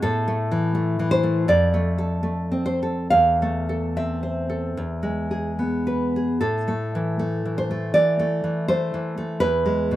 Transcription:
0.02 A2 A4
0.28 A3
0.52 E3
0.75 A3
0.99 E3
1.11 C5
1.23 A3
1.48 F2 D5
1.74 A3
1.98 A4
2.23 A3
2.52 C4
2.66 C5
2.83 A4
3.10 E2 F5
3.42 A3
3.69 A4
3.97 C4 E5
4.23 C5
4.50 A4
4.77 E2
5.03 G#3
5.31 G#4
5.59 B3
5.87 B4
6.16 G#4
6.41 A2 A4
6.68 A3
6.95 E3
7.19 A3
7.46 E3
7.58 C5
7.71 A3
7.94 E3 D5
8.19 A3
8.44 E3
8.68 A3 C5
8.94 E3
9.18 A3
9.40 E2 B4
9.66 G#3
9.91 B2

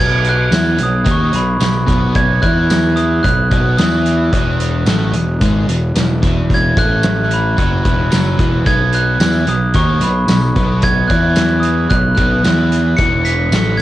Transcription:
Already playing: B1 B2
0.00 B3 G#6
0.25 closed hi-hat
0.29 F#6
0.51 E2 E3 E4, snare, closed hi-hat, tambourine
0.78 B1 B2, closed hi-hat
0.83 D#6
1.04 D#2 D#3 D#4, kick, closed hi-hat
1.11 C#6
1.33 B1 B2 B5, closed hi-hat
1.60 B1 B2, snare, closed hi-hat, tambourine
1.87 B1 B2 B3, kick, closed hi-hat
2.15 G#6, kick, closed hi-hat
2.42 E2 E3 E4 F#6, kick, closed hi-hat
2.70 snare, closed hi-hat, tambourine
2.96 D#6, closed hi-hat
3.23 B1 B2 F#6, kick, closed hi-hat
3.51 B1 B2 B3, kick, closed hi-hat
3.77 E2 E3 E4 D#6, snare, closed hi-hat, tambourine
4.06 closed hi-hat
4.32 E1 E2 E3, kick, closed hi-hat
4.60 closed hi-hat
4.85 A1 A2 A3, snare, closed hi-hat, tambourine
5.13 E1 E2, closed hi-hat
5.41 G#1 G#2 G#3, kick, closed hi-hat
5.68 E1 E2, closed hi-hat
5.94 E1 E2, snare, closed hi-hat, tambourine
6.22 E1 E2 E3, kick, closed hi-hat
6.50 kick, closed hi-hat
6.54 G#6
6.77 A1 A2 A3 F#6, kick, closed hi-hat
7.03 snare, closed hi-hat, tambourine
7.31 B5, closed hi-hat
7.57 F#1 F#2 F#3, kick, closed hi-hat
7.84 E1 E2 E3, kick, closed hi-hat
8.11 F#1 F#2 F#3, snare, closed hi-hat, tambourine
8.38 E1 E2 E3, kick, closed hi-hat
8.66 B1 B2 B3 G#6, kick, closed hi-hat
8.93 F#6, closed hi-hat
9.20 E2 E3 E4, snare, closed hi-hat, tambourine
9.47 B1 B2 D#6, closed hi-hat
9.74 D#2 D#3 D#4 C#6, kick, closed hi-hat
10.00 B1 B2 B5, closed hi-hat
10.27 B1 B2, snare, closed hi-hat, tambourine
10.55 B1 B2 B3, kick, closed hi-hat
10.82 G#6, kick, closed hi-hat
11.07 E2 E3 E4 F#6, kick, closed hi-hat
11.36 snare, closed hi-hat, tambourine
11.60 D#6, closed hi-hat
11.90 B1 B2 F#6, kick, closed hi-hat
12.15 B1 B2 B3 F#6, kick, closed hi-hat
12.43 E2 E3 E4, snare, closed hi-hat, tambourine
12.72 closed hi-hat
12.97 E1 E2 E3 C#7, kick, closed hi-hat
13.25 B6, closed hi-hat
13.51 A1 A2 A3, snare, closed hi-hat, tambourine
13.77 E1 G#6

